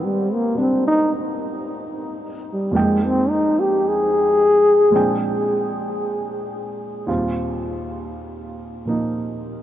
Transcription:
Already playing: G#2 D#3 G3 A#3 C4
0.04 G3
0.34 A#3
0.55 G3 C4 D4
0.60 C4
0.87 D#4
2.53 G3
2.71 F2 F3 G#3 A#3 D#4
2.76 G#3 G5
3.06 C4
3.30 D#4
3.60 G4
3.88 G#4
4.90 A#2 F3 G#3 C4
4.95 D4 G5
7.07 D#2 A#2 G3 C4 F4
8.85 A#2 F3 A#3 D#4

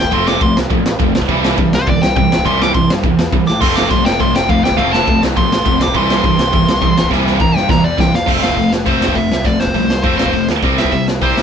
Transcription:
Already playing: G5
0.00 D2
0.05 kick
0.12 F1 F3 A3 C4 C6, kick, ride
0.27 D6, snare
0.41 F1 F3 A3 C6, kick, ride
0.56 C2, snare
0.70 A1 F3 A3, kick, ride
0.86 snare
1.00 F1 F3 A3, kick, ride
1.15 C2, snare
1.22 kick
1.29 C2 C3 E3 G3, kick, ride
1.44 snare
1.58 G2 C3 E3, kick, ride
1.73 C2 C5, snare
1.87 G1 C3 E3 D5, kick, ride
2.02 C2 G5, snare
2.16 C2 C3 E3 G5, kick, ride
2.31 A1, snare
2.38 kick
2.44 C2 C3 E3 G3 C6, kick, ride
2.62 D6, snare
2.73 C2 C3 E3 C6, kick, ride
2.90 G2, snare
3.03 E2 C3 E3, kick, ride
3.19 snare
3.32 C2 C3 E3, kick, ride
3.47 A2 D6, snare
3.60 F1 F2 C3 F3 A3 C4 C6, kick, crash
3.76 D6, snare
3.90 C2 F3 A3 C6, kick, ride
4.03 F1 F2 C3 F3 G5, snare
4.19 C2 F3 A3 C6, kick, ride
4.34 F1 G5, snare
4.48 F1 F3 A3 F5, kick, ride
4.63 D2 G5, snare
4.71 kick
4.77 F1 F2 C3 F3 A3 C4 F5, kick, ride
4.93 A5, snare
5.07 F1 F3 A3, kick, ride
5.21 C2 F2 C3 F3, snare
5.37 A1 F3 A3 C6, kick, ride
5.52 snare
5.65 F1 F3 A3, kick, ride
5.79 C2 C3 G3 C4 D6, snare
5.88 kick
5.94 C2 C3 E3 G3 C6, kick, ride
6.10 snare
6.22 G2 C3 E3 G3 C4 C6, kick, ride
6.38 C2, snare
6.52 G1 C3 E3, kick, ride
6.67 C2, snare
6.81 C2 C3 E3, kick, ride
6.95 A1 C3 G3 C4, snare
7.04 kick
7.10 C2 C3 E3 G3, kick, snare
7.27 snare
7.39 C2 C3 E3 G3 C4 A#5, kick
7.54 G2 G5, snare
7.69 E2 C3 E3 A#5, kick, snare
7.84 D5
7.98 C2 C3 E3 G5, kick, snare
8.13 E2 F5, snare
8.26 F1 F3 A3 C4, kick, crash
8.42 F1 F5, snare
8.50 kick
8.56 F1 F3 A3, kick, open hi-hat
8.73 snare
8.85 F1 F3 A3 C4 C5, kick, open hi-hat
9.00 F1, snare
9.08 kick
9.16 F1 F3 A3 E5, kick, open hi-hat
9.29 C2, snare
9.45 F1 F3 A3 D5, kick, open hi-hat
9.59 F1 C5, snare
9.67 kick
9.74 C2 F3 A3, kick, open hi-hat
9.90 snare
10.03 F1 F3 A3 C4 C5, kick, open hi-hat
10.18 F1 C5, snare
10.26 kick
10.33 F1 F3 A3, kick, open hi-hat
10.48 D2, snare
10.63 C2 C3 G3 C4, kick, open hi-hat
10.78 C2 E5, snare
10.85 kick
10.92 C2 C3 G3, kick, open hi-hat
11.08 snare
11.21 C2 C3 G3 C4 C5, kick, open hi-hat
11.36 C2, snare

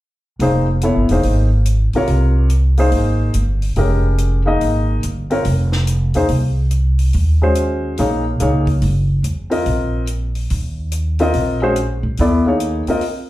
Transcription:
0.39 F1 A#3 D#4 G#4 C5, open hi-hat
0.81 B3 E4 A4 C#5, closed hi-hat
0.96 G1
1.09 E1 A#3 D#4 G#4 C5, open hi-hat
1.23 G#1, open hi-hat
1.65 closed hi-hat
1.93 C3 F4 A#4 C#5, muted upright bass stroke, open hi-hat
2.07 C2, open hi-hat
2.50 closed hi-hat
2.77 A#3 D#4 G#4 C5, open hi-hat
2.92 G#1, open hi-hat
3.34 G1, closed hi-hat
3.62 open hi-hat
3.76 F1 G#3 C#4 G4 A#4, open hi-hat
4.18 closed hi-hat
4.46 A#3 D#4 G#4 D#5
4.61 G#1, open hi-hat
5.03 G1, closed hi-hat
5.30 C4 F4 A#4 C#5, open hi-hat
5.45 F1, open hi-hat
5.72 snare
5.87 closed hi-hat
6.14 D#2 A#3 D#4 G#4 C5, open hi-hat
6.28 C2, open hi-hat
6.71 closed hi-hat
6.99 open hi-hat
7.13 D#2, open hi-hat
7.42 G#3 C#4 F#4 C5
7.55 closed hi-hat
7.97 A#1 A#3 D#4 G#4 C#5, open hi-hat
8.40 C#2 A#3 D#4 G#4 C#5, closed hi-hat
8.67 kick, open hi-hat
8.82 F#1, open hi-hat
9.24 E2, closed hi-hat
9.50 C4 F4 A#4 D#5, open hi-hat
9.66 A#1, open hi-hat
10.07 closed hi-hat
10.35 open hi-hat
10.50 D#2, open hi-hat
10.92 closed hi-hat
11.19 C4 F4 A#4 D#5, open hi-hat
11.34 A#1, open hi-hat
11.62 G#3 C#4 F#4 C5
11.76 closed hi-hat
12.03 D2
12.17 D#2 B3 E4 A4 D5, open hi-hat
12.46 A#3 D#4 G#4 C#5
12.60 closed hi-hat
12.87 C4 F4 A#4 D#5, muted upright bass stroke, open hi-hat
13.01 open hi-hat

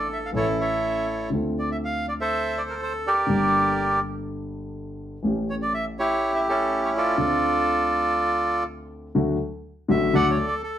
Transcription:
Already playing: A1 A2 E3 A3 D4 A4
0.13 E5
0.26 F5
0.32 A1 A2 E3 A3 C#4 E4 A4 C#5
0.61 A4 C#5 E5
1.32 D2 D3 A3 C4 F4
1.59 D5
1.72 E5
1.85 F5
2.08 D5
2.21 A4 C5 E5
2.58 D5
2.69 A#4
2.83 C5
3.07 G4 A#4 D5
3.27 G1 G2 D3 G3 A#3 G4
5.22 A1 A2 E3 A3 C#4 G4
5.50 C#5
5.62 D5
5.74 E5
5.99 E4 G4 C#5
6.35 E5
6.49 C#4 E4 A4
6.85 C#5
6.97 F4 A4 D5
7.18 D2 D3 A3 C4 F4
9.15 D2 D3 F#3 A3 F#4
9.89 A1 A2 D3 F#3 A3 F#4 E5
10.13 D2 D3 F#3 A3 F#4 A4 D5 F#5
10.31 C#5
10.47 D5
10.64 A4

